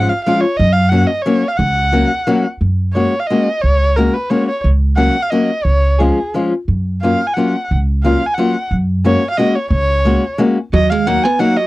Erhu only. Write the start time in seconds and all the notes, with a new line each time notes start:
Already playing: F#5
0.09 F5
0.24 F5
0.41 C#5
0.57 D#5
0.73 F5
0.89 F#5
1.07 D#5
1.15 D#5
1.22 C#5
1.48 F5
1.57 F#5
2.94 C#5
3.20 F5
3.27 D#5
3.61 C#5
3.96 A#4
4.14 B4
4.30 C#5
4.49 C#5
4.97 F#5
5.23 F5
5.30 D#5
5.64 C#5
5.99 G#4
7.02 F5
7.27 G#5
7.34 F#5
8.03 F5
8.26 G#5
8.34 F#5
9.06 C#5
9.30 F5
9.38 D#5
9.55 C#5
9.71 C#5
10.74 D#5
10.90 F5
11.07 F#5
11.24 G#5
11.40 F#5
11.57 D#5